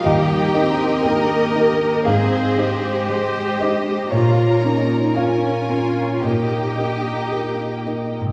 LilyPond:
<<
  \new Staff \with { instrumentName = "Violin section" } { \time 4/4 \key ees \mixolydian \tempo 4 = 58 g''4 ees''4 ees''2 | bes''4 aes''4 g''2 | }
  \new Staff \with { instrumentName = "Violin section" } { \time 4/4 \key ees \mixolydian << { ees''2 c''4 c''4 | des''4 des''4 ees''2 | } \\ { bes'2 aes'4 c''4 | bes'2 g'2 | } >> }
  \new Staff \with { instrumentName = "Felt piano" } { \time 4/4 \key ees \mixolydian << { ees''4 g''4 f''4. ees''8 | des''4 f''4 bes'4. r8 | } \\ { ees,8 <ees' bes'>8 <g' bes'>8 <ees' bes'>8 aes,8 <ees' c''>8 <aes c''>8 <ees' c''>8 | bes,8 <des' bes'>8 <f' bes'>8 <des' bes'>8 bes,8 <ees' bes'>8 <g' bes'>8 <ees' bes'>8 | } >> }
  \new Staff \with { instrumentName = "Cello section" } { \time 4/4 \key ees \mixolydian g'4 bes'4 aes'8 g'4. | f'8 ees'8 des'8 f'8 g'4. r8 | }
  \new Staff \with { instrumentName = "Viola section" } { \time 4/4 \key ees \mixolydian << { ees'4 g'4 c''4 c''8 g'8 | f'4 f'4 ees'2 | } \\ { g8 c'8 bes8 bes8 c'8 aes4. | bes4 des'8 des'8 bes2 | } >> }
  \new Staff \with { instrumentName = "Harp" } { \time 4/4 \key ees \mixolydian <ees bes>8 ees'8 bes'8 g''8 aes,8 c'8 aes8 ees''8 | bes,8 bes8 f'8 des''8 bes,8 bes8 g'8 ees''8 | }
>>